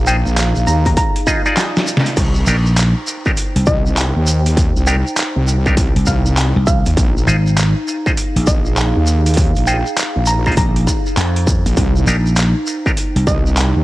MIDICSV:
0, 0, Header, 1, 8, 480
1, 0, Start_track
1, 0, Key_signature, -3, "minor"
1, 0, Tempo, 600000
1, 1737, Time_signature, 4, 2, 24, 8
1, 11071, End_track
2, 0, Start_track
2, 0, Title_t, "Synth pluck"
2, 0, Program_c, 0, 84
2, 58, Note_on_c, 0, 79, 91
2, 246, Note_off_c, 0, 79, 0
2, 536, Note_on_c, 0, 82, 94
2, 634, Note_off_c, 0, 82, 0
2, 691, Note_on_c, 0, 82, 74
2, 746, Note_off_c, 0, 82, 0
2, 779, Note_on_c, 0, 82, 90
2, 1258, Note_off_c, 0, 82, 0
2, 2935, Note_on_c, 0, 75, 91
2, 3125, Note_off_c, 0, 75, 0
2, 3897, Note_on_c, 0, 79, 93
2, 4086, Note_off_c, 0, 79, 0
2, 4855, Note_on_c, 0, 77, 92
2, 5318, Note_off_c, 0, 77, 0
2, 5335, Note_on_c, 0, 77, 92
2, 5637, Note_off_c, 0, 77, 0
2, 6778, Note_on_c, 0, 75, 90
2, 6966, Note_off_c, 0, 75, 0
2, 7738, Note_on_c, 0, 79, 91
2, 7926, Note_off_c, 0, 79, 0
2, 8217, Note_on_c, 0, 82, 92
2, 8314, Note_off_c, 0, 82, 0
2, 8373, Note_on_c, 0, 82, 75
2, 8427, Note_off_c, 0, 82, 0
2, 8460, Note_on_c, 0, 82, 91
2, 8938, Note_off_c, 0, 82, 0
2, 10618, Note_on_c, 0, 75, 94
2, 10806, Note_off_c, 0, 75, 0
2, 11071, End_track
3, 0, Start_track
3, 0, Title_t, "Ambient pad"
3, 0, Program_c, 1, 92
3, 0, Note_on_c, 1, 63, 91
3, 0, Note_on_c, 1, 68, 94
3, 0, Note_on_c, 1, 77, 89
3, 0, Note_on_c, 1, 82, 91
3, 1735, Note_off_c, 1, 68, 0
3, 1913, Note_on_c, 1, 72, 82
3, 1949, Note_on_c, 1, 79, 90
3, 2649, Note_off_c, 1, 77, 0
3, 6014, Note_on_c, 1, 77, 83
3, 6181, Note_on_c, 1, 68, 92
3, 6764, Note_off_c, 1, 72, 0
3, 7139, Note_off_c, 1, 79, 0
3, 9416, Note_off_c, 1, 68, 0
3, 9417, Note_off_c, 1, 82, 0
3, 9736, Note_on_c, 1, 72, 83
3, 9811, Note_on_c, 1, 79, 73
3, 9811, Note_on_c, 1, 82, 77
3, 10141, Note_off_c, 1, 77, 0
3, 11071, Note_off_c, 1, 63, 0
3, 11071, Note_off_c, 1, 72, 0
3, 11071, Note_off_c, 1, 79, 0
3, 11071, Note_off_c, 1, 82, 0
3, 11071, End_track
4, 0, Start_track
4, 0, Title_t, "Clav"
4, 0, Program_c, 2, 7
4, 55, Note_on_c, 2, 63, 92
4, 55, Note_on_c, 2, 65, 82
4, 56, Note_on_c, 2, 68, 83
4, 56, Note_on_c, 2, 72, 100
4, 130, Note_off_c, 2, 65, 0
4, 131, Note_off_c, 2, 63, 0
4, 131, Note_off_c, 2, 68, 0
4, 131, Note_off_c, 2, 72, 0
4, 1015, Note_on_c, 2, 65, 73
4, 1016, Note_on_c, 2, 63, 81
4, 1016, Note_on_c, 2, 68, 76
4, 1016, Note_on_c, 2, 75, 91
4, 1135, Note_off_c, 2, 65, 0
4, 1136, Note_off_c, 2, 63, 0
4, 1136, Note_off_c, 2, 68, 0
4, 1136, Note_off_c, 2, 75, 0
4, 1166, Note_on_c, 2, 63, 91
4, 1166, Note_on_c, 2, 65, 81
4, 1166, Note_on_c, 2, 74, 100
4, 1167, Note_on_c, 2, 68, 81
4, 1725, Note_off_c, 2, 63, 0
4, 1725, Note_off_c, 2, 65, 0
4, 1725, Note_off_c, 2, 68, 0
4, 1725, Note_off_c, 2, 74, 0
4, 1977, Note_on_c, 2, 62, 83
4, 1977, Note_on_c, 2, 63, 74
4, 1977, Note_on_c, 2, 67, 73
4, 1977, Note_on_c, 2, 70, 90
4, 2052, Note_off_c, 2, 62, 0
4, 2052, Note_off_c, 2, 63, 0
4, 2052, Note_off_c, 2, 67, 0
4, 2052, Note_off_c, 2, 70, 0
4, 2607, Note_on_c, 2, 70, 96
4, 2608, Note_on_c, 2, 62, 87
4, 2608, Note_on_c, 2, 63, 81
4, 2608, Note_on_c, 2, 67, 80
4, 2651, Note_off_c, 2, 67, 0
4, 2651, Note_off_c, 2, 70, 0
4, 2652, Note_off_c, 2, 62, 0
4, 2652, Note_off_c, 2, 63, 0
4, 3895, Note_on_c, 2, 62, 90
4, 3895, Note_on_c, 2, 67, 81
4, 3895, Note_on_c, 2, 70, 99
4, 3896, Note_on_c, 2, 63, 81
4, 3970, Note_off_c, 2, 70, 0
4, 3971, Note_off_c, 2, 62, 0
4, 3971, Note_off_c, 2, 63, 0
4, 3971, Note_off_c, 2, 67, 0
4, 4530, Note_on_c, 2, 67, 83
4, 4531, Note_on_c, 2, 62, 88
4, 4531, Note_on_c, 2, 63, 81
4, 4531, Note_on_c, 2, 70, 97
4, 4599, Note_off_c, 2, 62, 0
4, 4599, Note_off_c, 2, 63, 0
4, 4599, Note_off_c, 2, 67, 0
4, 4599, Note_off_c, 2, 70, 0
4, 5817, Note_on_c, 2, 63, 84
4, 5817, Note_on_c, 2, 65, 73
4, 5817, Note_on_c, 2, 68, 78
4, 5817, Note_on_c, 2, 72, 92
4, 5891, Note_off_c, 2, 63, 0
4, 5891, Note_off_c, 2, 68, 0
4, 5891, Note_off_c, 2, 72, 0
4, 5892, Note_off_c, 2, 65, 0
4, 6449, Note_on_c, 2, 68, 80
4, 6450, Note_on_c, 2, 63, 90
4, 6450, Note_on_c, 2, 65, 84
4, 6450, Note_on_c, 2, 72, 101
4, 6492, Note_off_c, 2, 68, 0
4, 6492, Note_off_c, 2, 72, 0
4, 6493, Note_off_c, 2, 63, 0
4, 6493, Note_off_c, 2, 65, 0
4, 7736, Note_on_c, 2, 65, 84
4, 7736, Note_on_c, 2, 68, 83
4, 7737, Note_on_c, 2, 63, 88
4, 7737, Note_on_c, 2, 72, 99
4, 7811, Note_off_c, 2, 63, 0
4, 7811, Note_off_c, 2, 65, 0
4, 7811, Note_off_c, 2, 68, 0
4, 7811, Note_off_c, 2, 72, 0
4, 8368, Note_on_c, 2, 63, 89
4, 8368, Note_on_c, 2, 65, 83
4, 8368, Note_on_c, 2, 68, 80
4, 8369, Note_on_c, 2, 72, 96
4, 8438, Note_off_c, 2, 63, 0
4, 8438, Note_off_c, 2, 65, 0
4, 8438, Note_off_c, 2, 68, 0
4, 8438, Note_off_c, 2, 72, 0
4, 9657, Note_on_c, 2, 70, 90
4, 9658, Note_on_c, 2, 62, 81
4, 9658, Note_on_c, 2, 63, 75
4, 9658, Note_on_c, 2, 67, 77
4, 9731, Note_off_c, 2, 70, 0
4, 9732, Note_off_c, 2, 62, 0
4, 9732, Note_off_c, 2, 63, 0
4, 9732, Note_off_c, 2, 67, 0
4, 10287, Note_on_c, 2, 62, 91
4, 10287, Note_on_c, 2, 67, 80
4, 10287, Note_on_c, 2, 70, 101
4, 10288, Note_on_c, 2, 63, 79
4, 10331, Note_off_c, 2, 62, 0
4, 10331, Note_off_c, 2, 67, 0
4, 10331, Note_off_c, 2, 70, 0
4, 10332, Note_off_c, 2, 63, 0
4, 11071, End_track
5, 0, Start_track
5, 0, Title_t, "Wobble bass"
5, 0, Program_c, 3, 39
5, 0, Note_on_c, 3, 34, 96
5, 184, Note_off_c, 3, 34, 0
5, 207, Note_on_c, 3, 34, 100
5, 423, Note_off_c, 3, 34, 0
5, 448, Note_on_c, 3, 34, 94
5, 522, Note_off_c, 3, 34, 0
5, 535, Note_on_c, 3, 39, 97
5, 762, Note_off_c, 3, 39, 0
5, 1735, Note_on_c, 3, 36, 97
5, 1962, Note_off_c, 3, 36, 0
5, 2936, Note_on_c, 3, 36, 99
5, 3304, Note_off_c, 3, 36, 0
5, 3326, Note_on_c, 3, 39, 96
5, 3783, Note_off_c, 3, 39, 0
5, 3807, Note_on_c, 3, 36, 98
5, 4024, Note_off_c, 3, 36, 0
5, 4287, Note_on_c, 3, 36, 96
5, 4744, Note_off_c, 3, 36, 0
5, 4856, Note_on_c, 3, 36, 99
5, 5224, Note_off_c, 3, 36, 0
5, 5489, Note_on_c, 3, 39, 100
5, 5563, Note_off_c, 3, 39, 0
5, 5576, Note_on_c, 3, 34, 97
5, 5802, Note_off_c, 3, 34, 0
5, 6777, Note_on_c, 3, 34, 96
5, 7144, Note_off_c, 3, 34, 0
5, 7168, Note_on_c, 3, 39, 96
5, 7624, Note_off_c, 3, 39, 0
5, 7648, Note_on_c, 3, 34, 95
5, 7864, Note_off_c, 3, 34, 0
5, 8127, Note_on_c, 3, 34, 99
5, 8442, Note_off_c, 3, 34, 0
5, 9326, Note_on_c, 3, 34, 96
5, 9402, Note_off_c, 3, 34, 0
5, 9416, Note_on_c, 3, 36, 95
5, 9642, Note_off_c, 3, 36, 0
5, 10615, Note_on_c, 3, 36, 98
5, 10983, Note_off_c, 3, 36, 0
5, 11006, Note_on_c, 3, 39, 93
5, 11071, Note_off_c, 3, 39, 0
5, 11071, End_track
6, 0, Start_track
6, 0, Title_t, "Slap bass"
6, 0, Program_c, 4, 36
6, 1976, Note_on_c, 4, 34, 93
6, 2344, Note_off_c, 4, 34, 0
6, 2847, Note_on_c, 4, 36, 97
6, 2922, Note_off_c, 4, 36, 0
6, 4767, Note_on_c, 4, 36, 99
6, 4842, Note_off_c, 4, 36, 0
6, 5249, Note_on_c, 4, 36, 102
6, 5464, Note_off_c, 4, 36, 0
6, 5816, Note_on_c, 4, 32, 98
6, 6184, Note_off_c, 4, 32, 0
6, 6688, Note_on_c, 4, 34, 101
6, 6762, Note_off_c, 4, 34, 0
6, 8457, Note_on_c, 4, 34, 101
6, 8683, Note_off_c, 4, 34, 0
6, 8937, Note_on_c, 4, 41, 97
6, 9304, Note_off_c, 4, 41, 0
6, 9656, Note_on_c, 4, 34, 92
6, 10024, Note_off_c, 4, 34, 0
6, 10527, Note_on_c, 4, 36, 94
6, 10602, Note_off_c, 4, 36, 0
6, 11071, End_track
7, 0, Start_track
7, 0, Title_t, "Shekere"
7, 56, Note_on_c, 9, 82, 98
7, 136, Note_off_c, 9, 82, 0
7, 210, Note_on_c, 9, 82, 36
7, 290, Note_off_c, 9, 82, 0
7, 298, Note_on_c, 9, 82, 50
7, 378, Note_off_c, 9, 82, 0
7, 445, Note_on_c, 9, 82, 38
7, 525, Note_off_c, 9, 82, 0
7, 536, Note_on_c, 9, 82, 94
7, 616, Note_off_c, 9, 82, 0
7, 684, Note_on_c, 9, 82, 39
7, 764, Note_off_c, 9, 82, 0
7, 774, Note_on_c, 9, 82, 47
7, 854, Note_off_c, 9, 82, 0
7, 1017, Note_on_c, 9, 82, 84
7, 1097, Note_off_c, 9, 82, 0
7, 1165, Note_on_c, 9, 82, 37
7, 1245, Note_off_c, 9, 82, 0
7, 1258, Note_on_c, 9, 82, 46
7, 1338, Note_off_c, 9, 82, 0
7, 1410, Note_on_c, 9, 82, 35
7, 1490, Note_off_c, 9, 82, 0
7, 1497, Note_on_c, 9, 82, 98
7, 1577, Note_off_c, 9, 82, 0
7, 1647, Note_on_c, 9, 82, 36
7, 1727, Note_off_c, 9, 82, 0
7, 1733, Note_on_c, 9, 82, 55
7, 1813, Note_off_c, 9, 82, 0
7, 1880, Note_on_c, 9, 82, 41
7, 1960, Note_off_c, 9, 82, 0
7, 1974, Note_on_c, 9, 82, 94
7, 2054, Note_off_c, 9, 82, 0
7, 2127, Note_on_c, 9, 82, 37
7, 2207, Note_off_c, 9, 82, 0
7, 2216, Note_on_c, 9, 82, 59
7, 2296, Note_off_c, 9, 82, 0
7, 2457, Note_on_c, 9, 82, 90
7, 2537, Note_off_c, 9, 82, 0
7, 2603, Note_on_c, 9, 82, 39
7, 2683, Note_off_c, 9, 82, 0
7, 2696, Note_on_c, 9, 82, 54
7, 2776, Note_off_c, 9, 82, 0
7, 2932, Note_on_c, 9, 82, 89
7, 3012, Note_off_c, 9, 82, 0
7, 3089, Note_on_c, 9, 82, 41
7, 3169, Note_off_c, 9, 82, 0
7, 3180, Note_on_c, 9, 82, 53
7, 3260, Note_off_c, 9, 82, 0
7, 3415, Note_on_c, 9, 82, 96
7, 3495, Note_off_c, 9, 82, 0
7, 3570, Note_on_c, 9, 82, 42
7, 3650, Note_off_c, 9, 82, 0
7, 3664, Note_on_c, 9, 82, 60
7, 3744, Note_off_c, 9, 82, 0
7, 3811, Note_on_c, 9, 82, 36
7, 3891, Note_off_c, 9, 82, 0
7, 3895, Note_on_c, 9, 82, 101
7, 3975, Note_off_c, 9, 82, 0
7, 4056, Note_on_c, 9, 82, 45
7, 4133, Note_off_c, 9, 82, 0
7, 4133, Note_on_c, 9, 82, 59
7, 4213, Note_off_c, 9, 82, 0
7, 4382, Note_on_c, 9, 82, 91
7, 4462, Note_off_c, 9, 82, 0
7, 4530, Note_on_c, 9, 82, 41
7, 4610, Note_off_c, 9, 82, 0
7, 4620, Note_on_c, 9, 82, 58
7, 4700, Note_off_c, 9, 82, 0
7, 4850, Note_on_c, 9, 82, 90
7, 4930, Note_off_c, 9, 82, 0
7, 5005, Note_on_c, 9, 82, 42
7, 5085, Note_off_c, 9, 82, 0
7, 5096, Note_on_c, 9, 82, 53
7, 5176, Note_off_c, 9, 82, 0
7, 5336, Note_on_c, 9, 82, 97
7, 5416, Note_off_c, 9, 82, 0
7, 5485, Note_on_c, 9, 82, 40
7, 5565, Note_off_c, 9, 82, 0
7, 5583, Note_on_c, 9, 82, 57
7, 5663, Note_off_c, 9, 82, 0
7, 5738, Note_on_c, 9, 82, 39
7, 5818, Note_off_c, 9, 82, 0
7, 5824, Note_on_c, 9, 82, 103
7, 5904, Note_off_c, 9, 82, 0
7, 5974, Note_on_c, 9, 82, 39
7, 6054, Note_off_c, 9, 82, 0
7, 6061, Note_on_c, 9, 82, 55
7, 6141, Note_off_c, 9, 82, 0
7, 6303, Note_on_c, 9, 82, 89
7, 6383, Note_off_c, 9, 82, 0
7, 6454, Note_on_c, 9, 82, 37
7, 6534, Note_off_c, 9, 82, 0
7, 6540, Note_on_c, 9, 82, 53
7, 6620, Note_off_c, 9, 82, 0
7, 6777, Note_on_c, 9, 82, 100
7, 6857, Note_off_c, 9, 82, 0
7, 6923, Note_on_c, 9, 82, 41
7, 7003, Note_off_c, 9, 82, 0
7, 7017, Note_on_c, 9, 82, 55
7, 7097, Note_off_c, 9, 82, 0
7, 7253, Note_on_c, 9, 82, 101
7, 7333, Note_off_c, 9, 82, 0
7, 7412, Note_on_c, 9, 82, 43
7, 7492, Note_off_c, 9, 82, 0
7, 7498, Note_on_c, 9, 82, 57
7, 7578, Note_off_c, 9, 82, 0
7, 7646, Note_on_c, 9, 82, 37
7, 7726, Note_off_c, 9, 82, 0
7, 7737, Note_on_c, 9, 82, 101
7, 7817, Note_off_c, 9, 82, 0
7, 7890, Note_on_c, 9, 82, 39
7, 7970, Note_off_c, 9, 82, 0
7, 7980, Note_on_c, 9, 82, 57
7, 8060, Note_off_c, 9, 82, 0
7, 8210, Note_on_c, 9, 82, 96
7, 8290, Note_off_c, 9, 82, 0
7, 8373, Note_on_c, 9, 82, 37
7, 8453, Note_off_c, 9, 82, 0
7, 8453, Note_on_c, 9, 82, 51
7, 8533, Note_off_c, 9, 82, 0
7, 8701, Note_on_c, 9, 82, 86
7, 8781, Note_off_c, 9, 82, 0
7, 8850, Note_on_c, 9, 82, 41
7, 8930, Note_off_c, 9, 82, 0
7, 8940, Note_on_c, 9, 82, 59
7, 9020, Note_off_c, 9, 82, 0
7, 9179, Note_on_c, 9, 82, 98
7, 9259, Note_off_c, 9, 82, 0
7, 9329, Note_on_c, 9, 82, 44
7, 9409, Note_off_c, 9, 82, 0
7, 9413, Note_on_c, 9, 82, 52
7, 9493, Note_off_c, 9, 82, 0
7, 9569, Note_on_c, 9, 82, 40
7, 9649, Note_off_c, 9, 82, 0
7, 9658, Note_on_c, 9, 82, 95
7, 9738, Note_off_c, 9, 82, 0
7, 9810, Note_on_c, 9, 82, 41
7, 9888, Note_off_c, 9, 82, 0
7, 9888, Note_on_c, 9, 82, 54
7, 9968, Note_off_c, 9, 82, 0
7, 10132, Note_on_c, 9, 82, 87
7, 10212, Note_off_c, 9, 82, 0
7, 10293, Note_on_c, 9, 82, 43
7, 10373, Note_off_c, 9, 82, 0
7, 10379, Note_on_c, 9, 82, 55
7, 10459, Note_off_c, 9, 82, 0
7, 10619, Note_on_c, 9, 82, 96
7, 10699, Note_off_c, 9, 82, 0
7, 10771, Note_on_c, 9, 82, 38
7, 10851, Note_off_c, 9, 82, 0
7, 10855, Note_on_c, 9, 82, 47
7, 10935, Note_off_c, 9, 82, 0
7, 11071, End_track
8, 0, Start_track
8, 0, Title_t, "Drums"
8, 297, Note_on_c, 9, 39, 120
8, 297, Note_on_c, 9, 42, 82
8, 377, Note_off_c, 9, 39, 0
8, 377, Note_off_c, 9, 42, 0
8, 687, Note_on_c, 9, 36, 59
8, 688, Note_on_c, 9, 42, 39
8, 767, Note_off_c, 9, 36, 0
8, 768, Note_off_c, 9, 42, 0
8, 775, Note_on_c, 9, 36, 104
8, 775, Note_on_c, 9, 42, 78
8, 855, Note_off_c, 9, 36, 0
8, 855, Note_off_c, 9, 42, 0
8, 927, Note_on_c, 9, 42, 51
8, 1007, Note_off_c, 9, 42, 0
8, 1014, Note_on_c, 9, 37, 55
8, 1015, Note_on_c, 9, 36, 60
8, 1094, Note_off_c, 9, 37, 0
8, 1095, Note_off_c, 9, 36, 0
8, 1256, Note_on_c, 9, 38, 71
8, 1256, Note_on_c, 9, 39, 118
8, 1256, Note_on_c, 9, 42, 80
8, 1336, Note_off_c, 9, 38, 0
8, 1336, Note_off_c, 9, 39, 0
8, 1336, Note_off_c, 9, 42, 0
8, 1416, Note_on_c, 9, 38, 84
8, 1496, Note_off_c, 9, 38, 0
8, 1576, Note_on_c, 9, 38, 99
8, 1649, Note_on_c, 9, 42, 54
8, 1656, Note_off_c, 9, 38, 0
8, 1729, Note_off_c, 9, 42, 0
8, 1736, Note_on_c, 9, 36, 116
8, 1736, Note_on_c, 9, 42, 79
8, 1736, Note_on_c, 9, 49, 74
8, 1816, Note_off_c, 9, 36, 0
8, 1816, Note_off_c, 9, 42, 0
8, 1816, Note_off_c, 9, 49, 0
8, 2217, Note_on_c, 9, 39, 123
8, 2217, Note_on_c, 9, 42, 86
8, 2297, Note_off_c, 9, 39, 0
8, 2297, Note_off_c, 9, 42, 0
8, 2608, Note_on_c, 9, 36, 62
8, 2688, Note_off_c, 9, 36, 0
8, 2697, Note_on_c, 9, 42, 82
8, 2777, Note_off_c, 9, 42, 0
8, 2848, Note_on_c, 9, 42, 54
8, 2928, Note_off_c, 9, 42, 0
8, 2936, Note_on_c, 9, 36, 102
8, 3016, Note_off_c, 9, 36, 0
8, 3177, Note_on_c, 9, 39, 125
8, 3177, Note_on_c, 9, 42, 86
8, 3257, Note_off_c, 9, 39, 0
8, 3257, Note_off_c, 9, 42, 0
8, 3569, Note_on_c, 9, 42, 56
8, 3649, Note_off_c, 9, 42, 0
8, 3656, Note_on_c, 9, 36, 118
8, 3657, Note_on_c, 9, 42, 82
8, 3736, Note_off_c, 9, 36, 0
8, 3737, Note_off_c, 9, 42, 0
8, 4137, Note_on_c, 9, 39, 127
8, 4137, Note_on_c, 9, 42, 88
8, 4217, Note_off_c, 9, 39, 0
8, 4217, Note_off_c, 9, 42, 0
8, 4528, Note_on_c, 9, 36, 64
8, 4608, Note_off_c, 9, 36, 0
8, 4616, Note_on_c, 9, 36, 113
8, 4617, Note_on_c, 9, 42, 81
8, 4696, Note_off_c, 9, 36, 0
8, 4697, Note_off_c, 9, 42, 0
8, 4769, Note_on_c, 9, 42, 53
8, 4849, Note_off_c, 9, 42, 0
8, 4857, Note_on_c, 9, 36, 63
8, 4857, Note_on_c, 9, 37, 55
8, 4937, Note_off_c, 9, 36, 0
8, 4937, Note_off_c, 9, 37, 0
8, 5098, Note_on_c, 9, 39, 127
8, 5098, Note_on_c, 9, 42, 84
8, 5178, Note_off_c, 9, 39, 0
8, 5178, Note_off_c, 9, 42, 0
8, 5337, Note_on_c, 9, 36, 111
8, 5417, Note_off_c, 9, 36, 0
8, 5490, Note_on_c, 9, 42, 55
8, 5570, Note_off_c, 9, 42, 0
8, 5577, Note_on_c, 9, 36, 125
8, 5579, Note_on_c, 9, 42, 80
8, 5657, Note_off_c, 9, 36, 0
8, 5659, Note_off_c, 9, 42, 0
8, 6059, Note_on_c, 9, 39, 127
8, 6059, Note_on_c, 9, 42, 86
8, 6139, Note_off_c, 9, 39, 0
8, 6139, Note_off_c, 9, 42, 0
8, 6449, Note_on_c, 9, 36, 66
8, 6529, Note_off_c, 9, 36, 0
8, 6539, Note_on_c, 9, 42, 81
8, 6619, Note_off_c, 9, 42, 0
8, 6691, Note_on_c, 9, 42, 54
8, 6771, Note_off_c, 9, 42, 0
8, 6777, Note_on_c, 9, 36, 112
8, 6857, Note_off_c, 9, 36, 0
8, 7018, Note_on_c, 9, 39, 127
8, 7098, Note_off_c, 9, 39, 0
8, 7410, Note_on_c, 9, 42, 51
8, 7469, Note_off_c, 9, 42, 0
8, 7469, Note_on_c, 9, 42, 43
8, 7497, Note_on_c, 9, 36, 123
8, 7500, Note_off_c, 9, 42, 0
8, 7500, Note_on_c, 9, 42, 75
8, 7550, Note_off_c, 9, 42, 0
8, 7550, Note_on_c, 9, 42, 35
8, 7577, Note_off_c, 9, 36, 0
8, 7630, Note_off_c, 9, 42, 0
8, 7652, Note_on_c, 9, 42, 36
8, 7732, Note_off_c, 9, 42, 0
8, 7978, Note_on_c, 9, 39, 127
8, 7978, Note_on_c, 9, 42, 82
8, 8058, Note_off_c, 9, 39, 0
8, 8058, Note_off_c, 9, 42, 0
8, 8369, Note_on_c, 9, 36, 64
8, 8414, Note_on_c, 9, 42, 36
8, 8449, Note_off_c, 9, 36, 0
8, 8457, Note_off_c, 9, 42, 0
8, 8457, Note_on_c, 9, 36, 109
8, 8457, Note_on_c, 9, 42, 79
8, 8537, Note_off_c, 9, 36, 0
8, 8537, Note_off_c, 9, 42, 0
8, 8609, Note_on_c, 9, 42, 50
8, 8689, Note_off_c, 9, 42, 0
8, 8697, Note_on_c, 9, 36, 64
8, 8697, Note_on_c, 9, 37, 50
8, 8777, Note_off_c, 9, 36, 0
8, 8777, Note_off_c, 9, 37, 0
8, 8938, Note_on_c, 9, 39, 127
8, 8938, Note_on_c, 9, 42, 79
8, 9018, Note_off_c, 9, 39, 0
8, 9018, Note_off_c, 9, 42, 0
8, 9090, Note_on_c, 9, 42, 37
8, 9170, Note_off_c, 9, 42, 0
8, 9177, Note_on_c, 9, 36, 112
8, 9257, Note_off_c, 9, 36, 0
8, 9328, Note_on_c, 9, 42, 52
8, 9408, Note_off_c, 9, 42, 0
8, 9417, Note_on_c, 9, 36, 122
8, 9418, Note_on_c, 9, 42, 72
8, 9497, Note_off_c, 9, 36, 0
8, 9498, Note_off_c, 9, 42, 0
8, 9897, Note_on_c, 9, 39, 124
8, 9897, Note_on_c, 9, 42, 80
8, 9977, Note_off_c, 9, 39, 0
8, 9977, Note_off_c, 9, 42, 0
8, 10288, Note_on_c, 9, 36, 63
8, 10368, Note_off_c, 9, 36, 0
8, 10376, Note_on_c, 9, 42, 75
8, 10456, Note_off_c, 9, 42, 0
8, 10529, Note_on_c, 9, 42, 50
8, 10609, Note_off_c, 9, 42, 0
8, 10616, Note_on_c, 9, 36, 103
8, 10696, Note_off_c, 9, 36, 0
8, 10856, Note_on_c, 9, 39, 125
8, 10856, Note_on_c, 9, 42, 78
8, 10936, Note_off_c, 9, 39, 0
8, 10936, Note_off_c, 9, 42, 0
8, 11071, End_track
0, 0, End_of_file